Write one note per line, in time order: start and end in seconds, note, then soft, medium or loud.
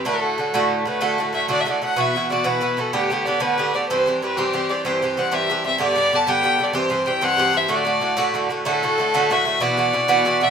0.05 0.37 A2 medium
0.05 0.37 D3 medium
0.05 0.38 A3 medium
0.05 0.39 F#4 medium
0.05 0.68 A4 medium
0.38 0.53 A2 medium
0.38 0.53 D3 medium
0.38 0.54 A3 medium
0.38 0.54 F#4 medium
0.54 0.84 A2 medium
0.54 0.86 D3 loud
0.54 0.86 A3 medium
0.54 0.87 F#4 loud
0.85 0.99 A2 medium
0.85 1.00 D3 medium
0.85 1.00 A3 medium
0.85 1.01 F#4 soft
0.85 1.04 B4 medium
1.01 1.17 A2 medium
1.01 1.18 D3 medium
1.01 1.19 A3 loud
1.01 1.19 F#4 medium
1.01 1.34 A4 medium
1.18 1.32 A2 medium
1.18 1.33 D3 soft
1.18 1.33 A3 medium
1.18 1.34 F#4 medium
1.33 1.47 A2 medium
1.33 1.48 D3 medium
1.33 1.48 A3 medium
1.33 1.48 F#4 medium
1.33 1.49 E5 medium
1.48 1.64 A2 medium
1.48 1.65 D3 medium
1.48 1.66 A3 medium
1.48 1.67 F#4 medium
1.48 1.62 D5 loud
1.61 1.72 E5 medium
1.65 1.80 A2 medium
1.65 1.81 D3 medium
1.65 1.82 A3 medium
1.65 1.82 F#4 medium
1.71 1.81 D5 medium
1.82 1.96 A2 medium
1.82 1.96 D3 soft
1.82 1.96 A3 medium
1.82 1.97 F#4 medium
1.82 2.02 F#5 medium
1.96 2.14 B2 medium
1.96 2.14 E3 medium
1.96 2.14 B3 medium
1.96 2.15 F#4 medium
2.00 2.30 E5 medium
2.15 2.29 B2 medium
2.15 2.29 E3 medium
2.15 2.30 B3 medium
2.15 2.31 F#4 medium
2.30 2.43 B2 medium
2.30 2.43 E3 medium
2.30 2.44 B3 medium
2.30 2.44 F#4 medium
2.30 2.48 D5 medium
2.44 2.59 B2 medium
2.44 2.60 E3 medium
2.44 2.61 B3 medium
2.44 2.61 F#4 medium
2.44 2.81 B4 loud
2.61 2.76 B2 medium
2.61 2.77 E3 medium
2.61 2.77 B3 medium
2.61 2.78 F#4 medium
2.77 2.93 B2 medium
2.77 2.93 E3 medium
2.77 2.92 B3 medium
2.77 2.93 F#4 medium
2.77 2.94 A4 medium
2.93 3.09 A2 medium
2.93 3.10 D3 medium
2.93 3.10 B3 medium
2.93 3.11 G4 medium
2.93 3.27 G4 medium
3.10 3.25 A2 medium
3.10 3.26 D3 medium
3.10 3.26 B3 medium
3.10 3.26 G4 medium
3.25 3.39 A2 medium
3.25 3.39 D3 medium
3.25 3.40 B3 medium
3.25 3.39 G4 medium
3.25 3.43 D5 loud
3.40 3.56 A2 medium
3.40 3.57 D3 medium
3.40 3.58 B3 medium
3.40 3.58 G4 medium
3.40 3.77 B4 loud
3.58 3.72 A2 medium
3.58 3.73 D3 medium
3.58 3.73 B3 medium
3.58 3.74 G4 medium
3.73 3.89 A2 soft
3.73 3.89 D3 soft
3.73 3.89 B3 medium
3.73 3.90 G4 medium
3.73 3.88 D5 medium
3.89 4.05 G2 medium
3.89 4.06 E3 medium
3.89 4.07 C4 medium
3.89 4.07 G4 medium
3.89 4.19 C5 medium
4.06 4.21 G2 medium
4.06 4.22 E3 medium
4.06 4.22 C4 medium
4.06 4.22 G4 medium
4.22 4.36 G2 medium
4.22 4.36 E3 medium
4.22 4.37 C4 medium
4.22 4.37 G4 medium
4.22 4.39 B4 medium
4.37 4.52 G2 medium
4.37 4.52 E3 medium
4.37 4.53 C4 loud
4.37 4.72 G4 loud
4.37 4.54 G4 medium
4.53 4.68 G2 medium
4.53 4.68 E3 medium
4.53 4.69 C4 medium
4.53 4.70 G4 medium
4.69 4.84 G2 soft
4.69 4.84 E3 soft
4.69 4.85 C4 medium
4.69 4.85 G4 medium
4.69 4.85 D5 medium
4.85 5.01 G2 medium
4.85 5.02 E3 medium
4.85 5.02 C4 medium
4.85 5.02 G4 medium
4.85 5.20 C5 medium
5.02 5.16 G2 medium
5.02 5.17 E3 medium
5.02 5.17 C4 medium
5.02 5.17 G4 medium
5.17 5.30 G2 medium
5.17 5.31 E3 medium
5.17 5.31 C4 medium
5.17 5.31 G4 medium
5.17 5.36 F#5 medium
5.32 5.48 G2 medium
5.32 5.49 E3 medium
5.32 5.49 C4 medium
5.32 5.49 G4 medium
5.32 5.65 E5 loud
5.50 5.63 G2 medium
5.50 5.63 E3 medium
5.50 5.64 C4 medium
5.50 5.65 G4 medium
5.64 5.77 G2 medium
5.64 5.79 E3 soft
5.64 5.79 C4 medium
5.64 5.79 G4 soft
5.64 5.79 E5 medium
5.78 5.95 G2 medium
5.78 5.95 D3 medium
5.78 5.96 B3 medium
5.78 5.97 G4 medium
5.83 6.17 D5 loud
5.96 6.11 G2 medium
5.96 6.12 D3 medium
5.96 6.12 B3 medium
5.96 6.13 G4 medium
6.12 6.26 G2 medium
6.12 6.26 D3 medium
6.12 6.27 B3 medium
6.12 6.27 G4 medium
6.12 6.31 A5 medium
6.27 6.41 G2 medium
6.27 6.42 D3 medium
6.27 6.43 B3 medium
6.27 6.44 G4 medium
6.27 6.65 G5 loud
6.43 6.57 G2 medium
6.43 6.58 D3 medium
6.43 6.59 B3 medium
6.43 6.60 G4 medium
6.58 6.72 G2 medium
6.58 6.73 D3 medium
6.58 6.74 B3 soft
6.58 6.74 G4 medium
6.64 6.77 D5 medium
6.73 6.89 G2 medium
6.73 6.89 E3 medium
6.73 6.89 C4 medium
6.73 6.90 G4 loud
6.78 7.09 C5 loud
6.90 7.05 G2 medium
6.90 7.05 E3 medium
6.90 7.06 C4 medium
6.90 7.07 G4 medium
7.06 7.20 G2 medium
7.06 7.20 E3 medium
7.06 7.21 C4 medium
7.06 7.21 G4 medium
7.06 7.25 G5 loud
7.21 7.36 G2 medium
7.21 7.37 E3 medium
7.21 7.38 C4 medium
7.21 7.38 G4 medium
7.21 7.58 F#5 loud
7.37 7.52 G2 medium
7.37 7.53 E3 medium
7.37 7.53 C4 medium
7.37 7.53 G4 medium
7.53 7.68 G2 medium
7.53 7.68 E3 medium
7.53 7.69 C4 medium
7.53 7.70 G4 medium
7.53 7.71 E5 medium
7.68 7.84 A2 medium
7.68 7.84 D3 medium
7.68 7.85 A3 medium
7.68 7.86 F#4 medium
7.74 8.48 D5 medium
7.85 8.00 A2 medium
7.85 8.00 D3 medium
7.85 8.01 A3 medium
7.85 8.01 F#4 medium
8.01 8.16 A2 medium
8.01 8.16 D3 medium
8.01 8.17 A3 medium
8.01 8.17 F#4 medium
8.17 8.33 A2 loud
8.17 8.34 D3 medium
8.17 8.34 A3 medium
8.17 8.35 F#4 loud
8.34 8.48 A2 medium
8.34 8.49 D3 medium
8.34 8.49 A3 medium
8.34 8.51 F#4 medium
8.49 8.64 A2 soft
8.49 8.64 D3 soft
8.49 8.65 A3 medium
8.49 8.65 F#4 medium
8.65 8.82 A2 medium
8.65 8.82 D3 medium
8.65 8.83 A3 medium
8.65 8.83 F#4 medium
8.65 9.34 A4 loud
8.83 8.97 A2 medium
8.83 8.98 D3 medium
8.83 8.98 A3 medium
8.83 8.99 F#4 medium
8.98 9.13 A2 medium
8.98 9.13 D3 medium
8.98 9.13 A3 medium
8.98 9.14 F#4 medium
9.14 9.29 A2 medium
9.14 9.30 D3 medium
9.14 9.30 A3 loud
9.14 9.31 F#4 medium
9.30 9.44 A2 medium
9.30 9.44 D3 medium
9.30 9.46 A3 medium
9.30 9.45 F#4 medium
9.30 9.63 E5 loud
9.45 9.60 A2 medium
9.45 9.61 D3 medium
9.45 9.61 A3 medium
9.45 9.61 F#4 soft
9.60 9.76 B2 medium
9.60 9.77 E3 medium
9.60 9.77 B3 medium
9.60 9.78 F#4 loud
9.60 10.45 D5 loud
9.78 9.92 B2 medium
9.78 9.93 E3 medium
9.78 9.93 B3 medium
9.78 9.93 F#4 medium
9.93 10.07 B2 medium
9.93 10.08 E3 medium
9.93 10.08 B3 medium
9.93 10.08 F#4 medium
10.08 10.24 B2 medium
10.08 10.25 E3 medium
10.08 10.25 B3 loud
10.08 10.26 F#4 loud
10.25 10.39 B2 medium
10.25 10.40 E3 medium
10.25 10.40 B3 medium
10.25 10.41 F#4 medium
10.41 10.50 B2 medium
10.41 10.50 E3 medium
10.41 10.50 B3 medium
10.41 10.50 F#4 medium
10.41 10.50 E5 loud